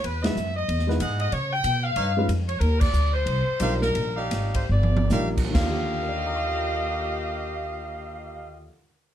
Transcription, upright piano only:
0, 0, Header, 1, 2, 480
1, 0, Start_track
1, 0, Key_signature, -3, "major"
1, 0, Tempo, 321371
1, 67, Time_signature, 4, 2, 24, 8
1, 4867, Tempo, 350058
1, 6307, Tempo, 396563
1, 7267, Tempo, 439883
1, 7747, Tempo, 458015
1, 11525, End_track
2, 0, Start_track
2, 0, Title_t, "Upright piano"
2, 0, Program_c, 0, 0
2, 348, Note_on_c, 0, 63, 58
2, 351, Note_on_c, 0, 56, 54
2, 362, Note_on_c, 0, 64, 47
2, 371, Note_on_c, 0, 71, 59
2, 373, Note_on_c, 0, 66, 47
2, 521, Note_off_c, 0, 63, 0
2, 522, Note_off_c, 0, 56, 0
2, 528, Note_off_c, 0, 64, 0
2, 532, Note_off_c, 0, 71, 0
2, 533, Note_off_c, 0, 66, 0
2, 1299, Note_on_c, 0, 56, 56
2, 1307, Note_on_c, 0, 63, 50
2, 1325, Note_on_c, 0, 64, 48
2, 1330, Note_on_c, 0, 71, 66
2, 1332, Note_on_c, 0, 66, 54
2, 1475, Note_off_c, 0, 56, 0
2, 1479, Note_off_c, 0, 63, 0
2, 1488, Note_off_c, 0, 64, 0
2, 1491, Note_off_c, 0, 71, 0
2, 1492, Note_off_c, 0, 66, 0
2, 3237, Note_on_c, 0, 56, 61
2, 3238, Note_on_c, 0, 61, 55
2, 3246, Note_on_c, 0, 63, 53
2, 3252, Note_on_c, 0, 65, 56
2, 3255, Note_on_c, 0, 71, 62
2, 3402, Note_off_c, 0, 56, 0
2, 3403, Note_off_c, 0, 61, 0
2, 3406, Note_off_c, 0, 63, 0
2, 3409, Note_off_c, 0, 65, 0
2, 3411, Note_off_c, 0, 71, 0
2, 5340, Note_on_c, 0, 55, 54
2, 5348, Note_on_c, 0, 62, 53
2, 5355, Note_on_c, 0, 63, 51
2, 5364, Note_on_c, 0, 65, 50
2, 5371, Note_on_c, 0, 70, 59
2, 6055, Note_off_c, 0, 55, 0
2, 6059, Note_off_c, 0, 62, 0
2, 6063, Note_off_c, 0, 63, 0
2, 6067, Note_off_c, 0, 65, 0
2, 6071, Note_off_c, 0, 70, 0
2, 7272, Note_on_c, 0, 55, 65
2, 7275, Note_on_c, 0, 62, 58
2, 7285, Note_on_c, 0, 63, 53
2, 7294, Note_on_c, 0, 65, 55
2, 7294, Note_on_c, 0, 70, 65
2, 7636, Note_on_c, 0, 39, 58
2, 7705, Note_on_c, 0, 51, 54
2, 7750, Note_off_c, 0, 55, 0
2, 7751, Note_off_c, 0, 62, 0
2, 7756, Note_off_c, 0, 63, 0
2, 7760, Note_off_c, 0, 65, 0
2, 7760, Note_off_c, 0, 70, 0
2, 7771, Note_on_c, 0, 50, 53
2, 7837, Note_on_c, 0, 65, 54
2, 7905, Note_on_c, 0, 67, 62
2, 8240, Note_on_c, 0, 70, 41
2, 8317, Note_on_c, 0, 74, 38
2, 8402, Note_on_c, 0, 77, 35
2, 8502, Note_on_c, 0, 82, 37
2, 8604, Note_on_c, 0, 86, 32
2, 8714, Note_on_c, 0, 89, 33
2, 8836, Note_on_c, 0, 94, 29
2, 10964, Note_off_c, 0, 39, 0
2, 11031, Note_off_c, 0, 51, 0
2, 11095, Note_off_c, 0, 50, 0
2, 11161, Note_off_c, 0, 65, 0
2, 11230, Note_off_c, 0, 67, 0
2, 11523, Note_off_c, 0, 70, 0
2, 11525, Note_off_c, 0, 74, 0
2, 11525, Note_off_c, 0, 77, 0
2, 11525, Note_off_c, 0, 82, 0
2, 11525, Note_off_c, 0, 86, 0
2, 11525, Note_off_c, 0, 89, 0
2, 11525, Note_off_c, 0, 94, 0
2, 11525, End_track
0, 0, End_of_file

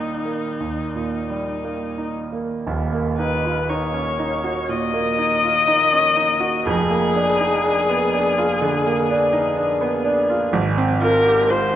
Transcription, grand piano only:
0, 0, Header, 1, 2, 480
1, 0, Start_track
1, 0, Key_signature, -6, "minor"
1, 0, Tempo, 1025641
1, 1245, Time_signature, 4, 2, 24, 8
1, 2195, Tempo, 980392
1, 4115, Tempo, 958466
1, 5690, End_track
2, 0, Start_track
2, 0, Title_t, "Grand piano"
2, 0, Program_c, 0, 0
2, 0, Control_c, 0, 64, 127
2, 0, Note_on_c, 0, 39, 36
2, 0, Note_on_c, 0, 46, 27
2, 0, Note_on_c, 0, 55, 28
2, 0, Note_on_c, 0, 58, 28
2, 0, Note_on_c, 0, 63, 30
2, 53, Note_off_c, 0, 58, 0
2, 120, Note_on_c, 0, 58, 26
2, 214, Note_off_c, 0, 63, 0
2, 262, Note_off_c, 0, 39, 0
2, 284, Note_on_c, 0, 39, 32
2, 379, Note_off_c, 0, 58, 0
2, 448, Note_off_c, 0, 46, 0
2, 448, Note_on_c, 0, 46, 30
2, 609, Note_off_c, 0, 55, 0
2, 609, Note_on_c, 0, 55, 28
2, 702, Note_off_c, 0, 46, 0
2, 770, Note_on_c, 0, 58, 26
2, 860, Note_off_c, 0, 55, 0
2, 927, Note_on_c, 0, 63, 29
2, 1022, Note_off_c, 0, 58, 0
2, 1088, Note_on_c, 0, 58, 29
2, 1183, Note_off_c, 0, 63, 0
2, 1228, Note_off_c, 0, 39, 0
2, 1247, Note_on_c, 0, 27, 47
2, 1248, Note_off_c, 0, 58, 0
2, 1249, Note_on_c, 0, 39, 46
2, 1254, Control_c, 0, 64, 0
2, 1350, Control_c, 0, 64, 127
2, 1369, Note_on_c, 0, 58, 37
2, 1491, Note_on_c, 0, 63, 40
2, 1561, Note_off_c, 0, 58, 0
2, 1615, Note_on_c, 0, 65, 36
2, 1682, Note_off_c, 0, 63, 0
2, 1730, Note_on_c, 0, 63, 40
2, 1731, Note_off_c, 0, 65, 0
2, 1844, Note_on_c, 0, 61, 42
2, 1917, Note_off_c, 0, 63, 0
2, 1962, Note_off_c, 0, 61, 0
2, 1962, Note_on_c, 0, 63, 41
2, 2078, Note_on_c, 0, 66, 42
2, 2149, Note_off_c, 0, 63, 0
2, 2179, Note_off_c, 0, 27, 0
2, 2180, Note_off_c, 0, 39, 0
2, 2195, Note_on_c, 0, 46, 47
2, 2269, Note_off_c, 0, 66, 0
2, 2316, Note_on_c, 0, 58, 48
2, 2391, Note_off_c, 0, 46, 0
2, 2437, Note_on_c, 0, 63, 46
2, 2511, Note_off_c, 0, 58, 0
2, 2560, Note_on_c, 0, 65, 41
2, 2632, Note_off_c, 0, 63, 0
2, 2678, Note_on_c, 0, 63, 50
2, 2681, Note_off_c, 0, 65, 0
2, 2799, Note_on_c, 0, 61, 42
2, 2872, Note_off_c, 0, 63, 0
2, 2917, Note_on_c, 0, 63, 53
2, 2920, Note_off_c, 0, 61, 0
2, 3034, Note_on_c, 0, 66, 50
2, 3111, Note_off_c, 0, 63, 0
2, 3158, Note_off_c, 0, 66, 0
2, 3158, Note_on_c, 0, 29, 59
2, 3164, Note_on_c, 0, 41, 66
2, 3169, Control_c, 0, 64, 0
2, 3244, Control_c, 0, 64, 127
2, 3278, Note_on_c, 0, 58, 53
2, 3403, Note_on_c, 0, 62, 50
2, 3472, Note_off_c, 0, 58, 0
2, 3522, Note_on_c, 0, 63, 50
2, 3594, Note_off_c, 0, 62, 0
2, 3641, Note_off_c, 0, 63, 0
2, 3641, Note_on_c, 0, 62, 51
2, 3765, Note_on_c, 0, 59, 48
2, 3832, Note_off_c, 0, 62, 0
2, 3882, Note_off_c, 0, 59, 0
2, 3882, Note_on_c, 0, 62, 55
2, 4000, Note_on_c, 0, 65, 60
2, 4071, Note_off_c, 0, 62, 0
2, 4096, Note_off_c, 0, 29, 0
2, 4098, Note_off_c, 0, 41, 0
2, 4118, Note_on_c, 0, 50, 59
2, 4190, Note_off_c, 0, 65, 0
2, 4241, Note_on_c, 0, 58, 64
2, 4309, Note_off_c, 0, 50, 0
2, 4364, Note_on_c, 0, 62, 65
2, 4430, Note_off_c, 0, 58, 0
2, 4474, Note_on_c, 0, 63, 53
2, 4551, Note_off_c, 0, 62, 0
2, 4593, Note_off_c, 0, 63, 0
2, 4596, Note_on_c, 0, 62, 61
2, 4715, Note_on_c, 0, 59, 54
2, 4786, Note_off_c, 0, 62, 0
2, 4834, Note_off_c, 0, 59, 0
2, 4834, Note_on_c, 0, 62, 66
2, 4958, Note_on_c, 0, 65, 62
2, 5027, Note_off_c, 0, 62, 0
2, 5075, Note_on_c, 0, 32, 78
2, 5078, Note_off_c, 0, 65, 0
2, 5085, Control_c, 0, 64, 0
2, 5171, Control_c, 0, 64, 127
2, 5198, Note_on_c, 0, 60, 65
2, 5315, Note_on_c, 0, 65, 65
2, 5392, Note_off_c, 0, 60, 0
2, 5441, Note_on_c, 0, 67, 56
2, 5509, Note_off_c, 0, 65, 0
2, 5560, Note_off_c, 0, 67, 0
2, 5563, Note_on_c, 0, 65, 53
2, 5690, Note_off_c, 0, 32, 0
2, 5690, Note_off_c, 0, 65, 0
2, 5690, End_track
0, 0, End_of_file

